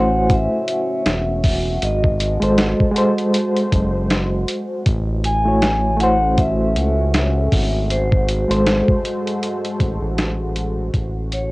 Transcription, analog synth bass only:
Already playing: A1
1.06 E1
1.82 G#1
2.42 G#1
3.73 F#1
4.86 A1
6.75 C#2
7.52 G#1
8.50 G#1
9.80 A1
10.02 A1
10.94 A1

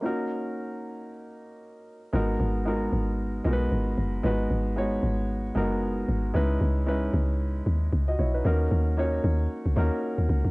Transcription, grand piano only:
0.01 A#3 C#4 D#4 F#4
0.05 A#4
2.13 G#3 B3 D#4 F#4 A#4
2.65 G#3 B3 D#4 F#4 A#4
3.44 G#3 B3 D#4 F#4 A#4
3.53 B4
4.23 G#3 B3 D#4 F#4 B4
4.76 G#3 B3 D#4 F#4 C#5
5.55 G#3 B3 D#4 F#4 A#4
6.34 G#3 C#4 D#4 E4 B4
6.86 G#3 C#4 D#4 E4 B4
8.08 F#4 D#5
8.19 E4 C#5
8.34 D#4 B4
8.44 A#3 C#4 D#4 F#4 A#4
8.97 A#3 C#4 D#4 F#4 C#5
9.76 A#3 C#4 D#4 F#4 A#4

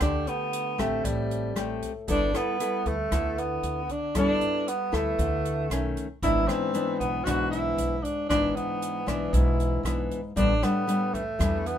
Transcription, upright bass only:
0.01 D2
0.79 A1
1.05 A1
1.56 A1
2.08 G1
2.86 D2
3.12 D2
3.63 D2
4.15 G1
4.93 D2
5.19 D2
5.70 B1
6.23 G#1
7.00 B1
7.26 B1
7.78 B1
8.30 G#1
9.07 B1
9.33 B1
9.83 B1
10.37 A1
11.14 E2
11.40 E2

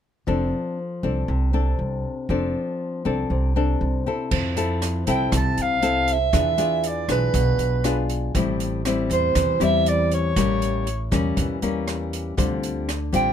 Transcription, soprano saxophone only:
5.10 G5
5.37 A5
5.62 F5
6.13 E5
6.88 D5
7.12 B4
9.13 C5
9.64 E5
9.89 D5
10.14 C#5
13.16 G5

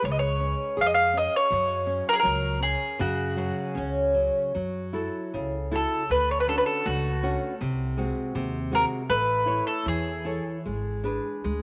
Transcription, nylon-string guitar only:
0.02 G#3
0.40 C#4
0.77 G#4
1.13 C#4
1.50 F#3
1.86 C#4
2.23 F#3
2.60 C#4
2.99 C#3
3.36 F#3
3.75 C#4
4.14 F#3
4.55 F#3
4.93 E4 F#4 A4
5.34 C#3
5.71 E4 F#4 A4
6.09 D3
6.47 C#4 D4 F#4
6.86 A3
7.23 C#4 D4 F#4
7.61 C3
7.97 G#3 C4 F#4
8.35 C3
8.71 G#3 C4 F#4
9.09 A3
9.46 E4 C#5
9.86 E3
10.25 E4 A4 C#5
10.65 G#3
11.04 D4 G#4 B4
11.44 G#3

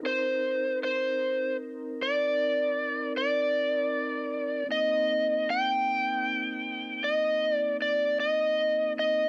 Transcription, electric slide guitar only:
0.06 C5
0.84 C5
2.02 D5
3.17 D5
4.72 D#5
5.50 G5
7.04 D#5
7.54 D5
7.82 D5
8.20 D#5
8.99 D#5

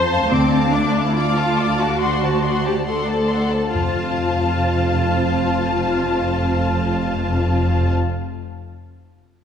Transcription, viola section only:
Already playing: C5
0.30 C4
0.72 D4
1.06 E4
1.16 F4
1.79 F#4
2.67 G4
2.88 A4
3.75 F4

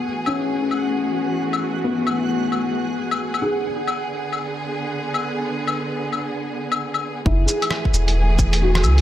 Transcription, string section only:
Already playing: G#4
0.04 E3 A3 F#4
1.84 G#4
3.65 D3 B3
7.26 A3 G#4

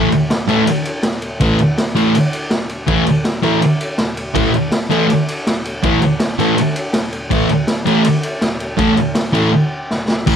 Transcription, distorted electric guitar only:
0.48 A2 E3 A3
1.40 A2 E3 A3
1.95 A2 E3 A3
2.87 A2 E3 A3
3.42 A2 E3 A3
4.35 A2 E3 A3
4.90 A2 E3 A3
5.84 A2 E3 A3
6.39 A2 E3 A3
7.31 A2 E3 A3
7.86 A2 E3 A3
8.78 A2 E3 A3
9.33 A2 E3 A3
10.27 A2 E3

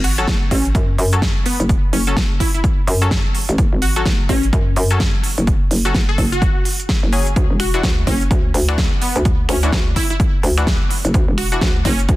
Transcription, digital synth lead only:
0.04 F#4
0.18 F#4
0.51 C#4
1.46 B3
1.93 C#4
2.07 C#4
2.40 E4
2.55 E4
3.82 F#4
3.96 F#4
4.29 C#4
5.85 F#4
6.09 A4
6.32 F#4
7.60 F#4
7.74 F#4
8.07 C#4
9.02 B3
9.49 C#4
9.63 C#4
9.96 E4
10.10 E4
11.38 F#4
11.52 F#4
11.85 C#4

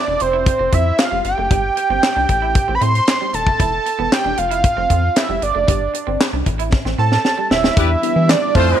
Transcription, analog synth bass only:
0.08 E1
0.21 F1
0.60 F1
0.73 F2
1.12 F1
1.25 G1
1.38 F#1
1.51 G1
1.90 G1
2.16 C2
2.29 A1
2.69 A1
2.81 A2
3.33 D#1
3.60 E1
3.99 E1
4.25 E1
4.38 F1
4.77 F1
4.90 F2
5.29 F1
5.42 G1
5.55 F#1
5.68 G1
6.07 G1
6.33 C2
6.47 A1
6.85 A1
6.98 A2
7.51 D#1
7.77 E2
8.16 E3
8.55 F2

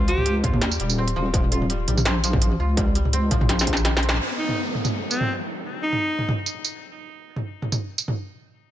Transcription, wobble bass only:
Already playing: C#2
0.44 D#2
0.80 D#1
1.16 D#1
1.34 D#1
1.88 A#1
2.60 C#2
3.31 A#1

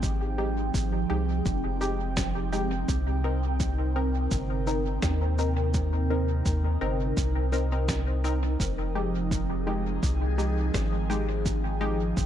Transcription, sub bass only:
Already playing: G#1
0.74 G#1
1.10 C2
1.46 F1
2.88 C2
4.32 G1
5.03 D#2
6.46 D#2
6.82 G1
7.17 C2
8.60 F1
10.03 C2
10.74 G#1
12.17 G#1

